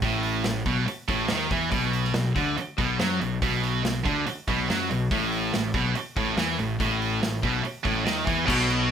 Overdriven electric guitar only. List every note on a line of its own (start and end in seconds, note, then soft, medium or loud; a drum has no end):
0.03 0.44 A2 medium
0.46 0.62 A2 medium
0.67 0.87 B2 medium
0.88 muted overdriven electric guitar stroke medium
1.09 1.30 A2 loud
1.31 1.51 D#3 loud
1.52 1.72 E3 loud
1.72 2.13 B2 loud
2.14 2.31 B2 medium
2.35 2.56 D3 medium
2.58 muted overdriven electric guitar stroke medium
2.78 2.99 B2 loud
3.00 3.20 F#3 loud
3.21 3.38 B2 medium
3.43 3.84 B2 loud
3.85 4.02 B2 medium
4.07 4.26 D3 loud
4.28 muted overdriven electric guitar stroke medium
4.49 4.69 B2 loud
4.70 4.90 F#3 medium
4.91 5.07 B2 medium
5.12 5.53 A2 loud
5.54 5.70 A2 medium
5.75 5.95 B2 medium
5.95 muted overdriven electric guitar stroke medium
6.17 6.37 A2 loud
6.37 6.58 E3 loud
6.59 6.76 A2 medium
6.80 7.21 A2 loud
7.22 7.39 A2 medium
7.43 7.63 B2 medium
7.64 muted overdriven electric guitar stroke medium
7.85 8.05 A2 loud
8.05 8.26 D#3 loud
8.27 8.47 E3 loud
8.47 8.91 B2 loud